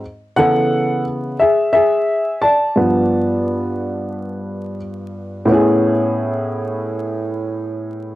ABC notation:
X:1
M:4/4
L:1/8
Q:"Swing 16ths" 1/4=88
K:A
V:1 name="Upright piano"
z [Af]2 z [Ge] [Ge]2 [da]- | [da]6 z2 | [A,,B,CEG]8 |]
V:2 name="Upright piano" clef=bass
z [C,E,B,]3 z4 | [=G,,=F,B,]8 | z8 |]